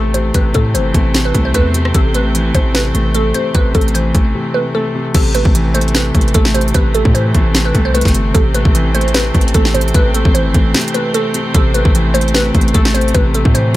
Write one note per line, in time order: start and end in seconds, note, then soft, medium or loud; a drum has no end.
0.00 0.32 A1 loud
0.00 0.15 C3 medium
0.00 5.11 C3 medium
0.00 0.15 E3 medium
0.00 0.55 A3 medium
0.00 5.11 A3 medium
0.00 5.11 C4 medium
0.14 0.33 C3 medium
0.14 0.29 C5 medium
0.14 closed hi-hat medium
0.34 0.54 A1 loud
0.34 1.13 C3 loud
0.34 0.50 B4 medium
0.34 kick loud
0.34 closed hi-hat medium
0.54 0.76 A2 loud
0.54 0.93 A3 medium
0.54 0.70 A4 medium
0.54 kick medium
0.54 closed hi-hat medium
0.74 0.94 G1 loud
0.74 1.75 E3 medium
0.74 1.22 C5 medium
0.74 closed hi-hat medium
0.94 1.33 A1 loud
0.94 1.33 A3 medium
0.94 kick medium
0.94 closed hi-hat medium
1.14 1.73 C3 medium
1.14 snare loud
1.14 closed hi-hat medium
1.25 1.40 B4 medium
1.34 1.54 C2 loud
1.34 1.53 A3 medium
1.34 kick medium
1.34 closed hi-hat medium
1.45 1.52 C5 medium
1.54 1.93 E2 loud
1.54 1.95 A3 loud
1.54 1.70 B4 medium
1.54 kick medium
1.54 closed hi-hat loud
1.74 1.93 C3 medium
1.74 closed hi-hat medium
1.85 cross-stick loud
1.94 2.52 A1 loud
1.94 2.73 C3 medium
1.94 2.10 A4 medium
1.94 kick loud
1.94 closed hi-hat medium
2.14 2.53 A3 medium
2.14 2.52 B4 medium
2.14 closed hi-hat medium
2.34 3.35 E3 medium
2.34 closed hi-hat medium
2.54 2.93 A1 loud
2.54 2.93 A3 medium
2.54 2.70 C5 medium
2.54 kick medium
2.54 closed hi-hat medium
2.75 3.33 C3 medium
2.75 3.12 B4 medium
2.75 snare loud
2.75 closed hi-hat medium
2.95 3.33 A1 loud
2.95 3.13 A3 medium
2.95 closed hi-hat medium
3.15 3.73 A3 medium
3.15 3.30 A4 medium
3.15 closed hi-hat medium
3.34 3.53 C3 medium
3.34 3.50 C5 medium
3.34 closed hi-hat medium
3.55 3.74 A1 loud
3.55 4.33 C3 medium
3.55 3.70 B4 loud
3.55 kick loud
3.55 closed hi-hat medium
3.75 4.13 A1 loud
3.75 4.13 A3 medium
3.75 3.90 A4 medium
3.75 kick medium
3.75 closed hi-hat medium
3.75 open hi-hat medium
3.81 closed hi-hat medium
3.88 closed hi-hat medium
3.94 4.95 E3 medium
3.94 4.51 C5 medium
3.94 closed hi-hat medium
4.14 4.34 A1 loud
4.14 4.53 A3 medium
4.14 kick medium
4.14 closed hi-hat medium
4.35 4.93 C3 medium
4.54 4.73 A3 medium
4.54 4.70 B4 medium
4.75 5.15 A3 medium
4.75 4.90 A4 medium
4.95 5.13 C3 medium
5.14 5.44 A1 loud
5.14 5.93 C3 medium
5.14 11.51 C3 medium
5.14 8.31 A3 medium
5.14 13.77 C4 medium
5.14 5.30 A4 medium
5.14 kick loud
5.14 closed hi-hat medium
5.14 crash loud
5.35 5.73 A3 medium
5.35 5.72 B4 medium
5.35 closed hi-hat medium
5.45 6.12 A1 loud
5.45 kick loud
5.55 6.55 E3 medium
5.55 closed hi-hat medium
5.74 6.13 A3 medium
5.74 5.89 C5 medium
5.74 closed hi-hat medium
5.81 closed hi-hat medium
5.88 closed hi-hat soft
5.95 6.53 C3 medium
5.95 6.32 B4 medium
5.95 snare loud
5.95 closed hi-hat medium
6.15 6.34 A1 loud
6.15 6.33 A3 medium
6.15 kick loud
6.15 closed hi-hat medium
6.21 closed hi-hat medium
6.28 closed hi-hat medium
6.34 6.73 A1 loud
6.34 6.93 A3 medium
6.34 6.50 A4 medium
6.34 kick loud
6.34 closed hi-hat medium
6.45 snare medium
6.54 6.73 C3 medium
6.54 6.70 C5 medium
6.54 closed hi-hat medium
6.61 closed hi-hat medium
6.68 closed hi-hat medium
6.74 7.04 A1 loud
6.74 7.53 C3 loud
6.74 6.90 B4 medium
6.74 kick loud
6.74 closed hi-hat medium
6.95 7.33 A3 medium
6.95 7.10 A4 medium
6.95 closed hi-hat medium
7.05 7.33 A2 loud
7.05 kick loud
7.15 8.15 E3 medium
7.15 7.62 C5 medium
7.15 closed hi-hat medium
7.35 7.73 A1 loud
7.35 7.73 A3 medium
7.35 kick medium
7.35 closed hi-hat medium
7.55 8.13 C3 medium
7.55 snare loud
7.55 closed hi-hat medium
7.65 7.80 B4 medium
7.75 8.04 C2 loud
7.75 7.93 A3 medium
7.75 kick medium
7.75 closed hi-hat medium
7.85 7.92 C5 medium
7.94 8.35 A3 loud
7.94 8.09 B4 medium
7.94 closed hi-hat medium
8.01 8.33 G1 loud
8.01 kick medium
8.01 snare medium
8.01 closed hi-hat medium
8.08 closed hi-hat medium
8.14 8.33 C3 medium
8.14 closed hi-hat medium
8.34 8.64 A1 loud
8.34 9.13 C3 medium
8.34 13.77 A3 medium
8.34 8.50 A4 medium
8.34 kick loud
8.34 closed hi-hat medium
8.54 8.93 A3 medium
8.54 8.92 B4 medium
8.54 closed hi-hat medium
8.65 9.32 A1 loud
8.65 kick loud
8.75 9.75 E3 medium
8.75 closed hi-hat medium
8.95 9.33 A3 medium
8.95 9.10 C5 medium
8.95 closed hi-hat medium
9.01 closed hi-hat medium
9.08 closed hi-hat soft
9.14 9.73 C3 medium
9.14 9.52 B4 medium
9.14 snare loud
9.14 closed hi-hat medium
9.35 9.54 A1 loud
9.35 9.53 A3 medium
9.35 kick medium
9.35 closed hi-hat medium
9.41 closed hi-hat medium
9.48 closed hi-hat medium
9.54 9.93 A1 loud
9.54 10.13 A3 medium
9.54 9.70 A4 medium
9.54 kick medium
9.54 closed hi-hat medium
9.65 snare medium
9.74 9.93 C3 medium
9.74 9.89 C5 medium
9.74 closed hi-hat medium
9.81 closed hi-hat medium
9.88 closed hi-hat soft
9.94 10.24 A1 loud
9.94 10.73 C3 medium
9.94 10.09 B4 loud
9.94 kick loud
9.94 closed hi-hat medium
10.14 10.53 A3 medium
10.14 10.30 A4 medium
10.14 closed hi-hat medium
10.25 10.47 A1 loud
10.25 kick loud
10.34 11.35 E3 medium
10.34 10.91 C5 medium
10.34 closed hi-hat medium
10.45 10.54 G1 loud
10.54 10.74 A1 loud
10.54 10.93 A3 medium
10.54 kick medium
10.54 closed hi-hat medium
10.74 11.33 C3 medium
10.74 snare loud
10.74 closed hi-hat soft
10.81 closed hi-hat medium
10.88 closed hi-hat medium
10.94 11.13 A3 medium
10.94 11.09 B4 medium
10.94 closed hi-hat medium
11.14 11.55 A3 loud
11.14 11.30 A4 medium
11.14 closed hi-hat medium
11.34 11.53 C3 medium
11.34 closed hi-hat medium
11.54 11.84 A1 loud
11.54 12.33 C3 medium
11.54 13.77 C3 medium
11.54 11.70 A4 medium
11.54 kick loud
11.54 closed hi-hat medium
11.74 12.13 A3 medium
11.74 12.12 B4 medium
11.74 closed hi-hat medium
11.85 12.52 A1 loud
11.85 kick loud
11.95 12.95 E3 medium
11.95 closed hi-hat medium
12.14 12.53 A3 medium
12.14 12.29 C5 medium
12.14 closed hi-hat medium
12.21 closed hi-hat medium
12.28 closed hi-hat soft
12.34 12.93 C3 medium
12.34 12.72 B4 medium
12.34 snare loud
12.34 closed hi-hat medium
12.55 12.74 A1 loud
12.55 12.73 A3 medium
12.55 kick medium
12.55 closed hi-hat medium
12.61 closed hi-hat medium
12.68 closed hi-hat medium
12.74 13.13 A1 loud
12.74 13.33 A3 medium
12.74 12.89 A4 loud
12.74 kick loud
12.74 closed hi-hat medium
12.85 snare medium
12.94 13.13 C3 medium
12.94 13.10 C5 medium
12.94 closed hi-hat medium
13.01 closed hi-hat medium
13.08 closed hi-hat soft
13.14 13.44 A1 loud
13.14 13.77 C3 loud
13.14 13.30 B4 medium
13.14 kick loud
13.14 closed hi-hat medium
13.34 13.73 A3 medium
13.34 13.50 A4 medium
13.34 closed hi-hat medium
13.45 13.73 A2 loud
13.45 kick loud
13.55 13.77 E3 medium
13.55 13.77 C5 medium
13.55 closed hi-hat medium